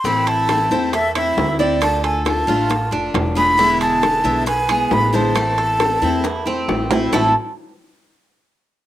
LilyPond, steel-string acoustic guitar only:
\new Staff \with { instrumentName = "Steel-string acoustic guitar" } { \time 4/4 \key a \minor \tempo 4 = 135 <e a c' e'>4 <e a c' e'>8 <a c' e'>8 r8 <a c' e'>4 <a c' e'>8 | <d a d' f'>4 <d a d' f'>8 <a d' f'>8 r8 <a d' f'>4 <a d' f'>8 | <b, d gis b e'>4 <d gis b e'>8 <d gis b e'>8 r8 <gis b e'>4 <d gis b e'>8 | <e a c' e'>4 <e a c' e'>8 <a c' e'>8 r8 <a c' e'>4 <a c' e'>8 |
<a, e a c' e'>8 r2. r8 | }